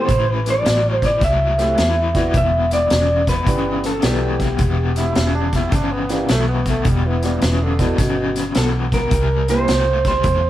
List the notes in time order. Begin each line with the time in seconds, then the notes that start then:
Already playing: C5
0.09 A1 A2 E3, kick, closed hi-hat
0.30 B4
0.46 snare, closed hi-hat
0.50 D5
0.65 A1 A2 F#3, snare, closed hi-hat
0.94 C5
1.02 A2 E3 D5, kick, snare, closed hi-hat
1.21 C2 A2 F#3 E5, kick, snare, closed hi-hat
1.58 A3 C4 E4 G4, snare, closed hi-hat
1.78 E2 A2 E3, snare, closed hi-hat
2.15 A2 E3 B3 D4 E4 F#4, kick, snare, closed hi-hat
2.34 E1 E2 B2 E5, kick, closed hi-hat
2.71 D5, snare, closed hi-hat
2.90 E1 E2 C#3, snare, closed hi-hat
3.27 E2 B2 B4, kick, snare, closed hi-hat
3.46 G1 E2 C#3 B3 D4 E4 G4, kick, closed hi-hat
3.84 A4, snare, closed hi-hat
4.02 B1 E2 B2 B3 D4 E4 G4 A4, snare, closed hi-hat
4.40 E2 B2, kick, snare, closed hi-hat
4.59 E1 E2 B2, kick, closed hi-hat
4.96 E4, snare, closed hi-hat
5.15 E1 E2 C#3, snare, closed hi-hat
5.35 D4
5.53 E2 B2 E4, kick, snare, closed hi-hat
5.72 G1 E2 C#3 D4, kick, snare, closed hi-hat
5.92 B3
6.09 A#3 B3 D4 E4 G4, snare, closed hi-hat
6.29 B1 E2 B2 A3, snare, closed hi-hat
6.48 B3
6.66 E2 B2 A3, kick, snare, closed hi-hat
6.85 E1 E2 B2 G3, kick, closed hi-hat
7.06 E3
7.23 G3 B3 D4 E4 G4, snare, closed hi-hat
7.42 E1 E2 C#3 E3, snare, closed hi-hat
7.62 D3
7.79 E2 B2 B3 D4 E4 A4, kick, snare, closed hi-hat
7.98 G1 E2 B2 C#3, kick, snare, closed hi-hat
8.36 snare, closed hi-hat
8.55 B1 E2 B2 A4, snare, closed hi-hat
8.92 E2 B2 A#4, kick, snare, closed hi-hat
9.11 C2 C3 G3, kick, closed hi-hat
9.48 A#3 C4 E4 G4 C5, snare, closed hi-hat
9.68 C2 C3 A3, snare, closed hi-hat
10.05 C3 G3 C5, kick, snare, closed hi-hat
10.24 E2 C3 A3, kick, closed hi-hat